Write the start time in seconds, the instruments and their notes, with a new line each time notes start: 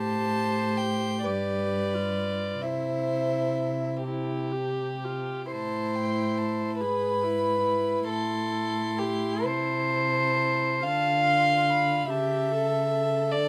Already playing: cello A2, viola G4, violin C5 A5
0.77 violin G5
1.24 cello G2, viola G4, violin B4 D5
1.94 viola F4
2.62 cello C3, viola E4, violin C5 E5
4.03 viola E4, violin G4
4.52 viola G4
5.05 viola F4
5.51 cello A2, viola E4, violin C5 A5
5.95 violin G5
6.38 violin A5
6.81 cello G#2, viola G#4, violin B4 B5
7.23 viola E4
7.67 viola E4
8.07 cello A2, violin A4 C6
8.99 violin G4
9.44 cello C3, violin C5 A5
10.83 cello D3, viola F4, violin F5 A5
11.26 violin C6
11.70 violin B5
12.09 cello C#3, viola G4, violin E5 A5
12.52 viola A4
12.93 viola A4
13.32 cello D3, violin D5 A5